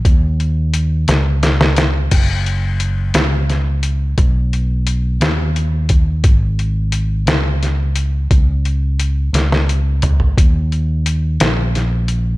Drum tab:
CC |------------|x-----------|------------|------------|
HH |x-x-x-x-x-x-|x-x-x-x-x-x-|x-x-x-x-x-x-|x-x-x-x-x-x-|
SD |------o-ooo-|------o-o---|------o-----|------o-o---|
T2 |------------|------------|------------|------------|
FT |------------|------------|------------|------------|
BD |o-----------|o-----------|o---------o-|o-----------|

CC |------------|------------|
HH |x-x-x-x-x-x-|x-x-x-x-x-x-|
SD |------oo----|------o-o---|
T2 |----------o-|------------|
FT |-----------o|------------|
BD |o-----------|o-----------|